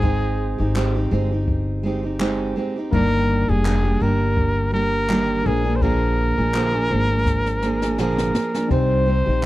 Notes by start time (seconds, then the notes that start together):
Already playing: G#1 G#3 G#4 C5 G5
0.02 G#3 C4 D#4, kick
0.58 G#1 C4 D#4 G4
0.75 G#3 C4 D#4 G4, clap
0.95 C4 D#4 G4
1.11 G1 G#3 C4 D#4 G4
1.31 C4 D#4 G4
1.48 kick
1.83 G#3 C4 D#4 G4
2.03 C4 D#4 G4
2.20 G#3 C4 D#4 G4, clap
2.56 G#3 C4 D#4 G4
2.76 C4 D#4 G4
2.90 G1 G2 D#3 G3 A#3 D#4 A#4 D5, kick
2.95 D4 G4
3.48 F1 G3 A#3 D4 G4 G#4
3.64 G2 D#3 G3 A#3 D4 G4, clap
3.84 G3 A#3 D4 G4
4.00 G1 G3 A#3 D4 G4 A#4
4.37 kick
4.72 G3 A#3 D4 G4 A#4
5.08 G2 D#3 G3 A#3 D4 G4, clap
5.43 A#1 F3 G#3 A#3 D4 G#4
5.48 G#4 A#4
5.64 F3 A#3 D4 G#4
5.76 C5
5.81 A#2 D3 F3 A#3 D4 G#4 A#4, kick
6.37 A#1 F3 A#3 D4 G#4
6.53 A#2 D3 F3 A#3 D4 G#4, clap
6.73 F3 A#3 D4 G#4
6.90 G#1 F3 A#3 D4 G#4
7.10 F3 A#3 D4 G#4
7.26 kick, snare
7.46 snare
7.62 F3 A#3 D4 G#4, snare
7.82 F3 A#3 D4 G#4, snare
7.98 A#2 D3 F3 A#3 D4 G#4 A#4, snare
8.18 snare
8.33 F3 A#3 D4 G#4, snare
8.54 F3 A#3 D4 G#4, snare
8.68 C2 C3 G3 C4 D#4 C5, kick
8.73 G4 C5
9.06 G3 C4 D#4 G4
9.26 A#1 C4 D#4 G4
9.42 C3